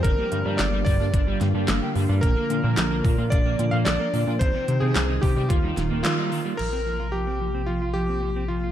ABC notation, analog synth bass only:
X:1
M:4/4
L:1/16
Q:1/4=110
K:Bbmix
V:1 name="Analog synth bass" clef=bass
G,,, z G,, G,, G,,,2 G,, G,, G,,,2 G,, G,, G,,, z G,, G,, | B,,, z B,, B,, B,,,2 B,, B,, B,,,2 B,, B,, B,,, z B,, B,, | C,, z C, C, C,,2 C, C, E,,2 E,,, E,,, z4 | B,,,16 |]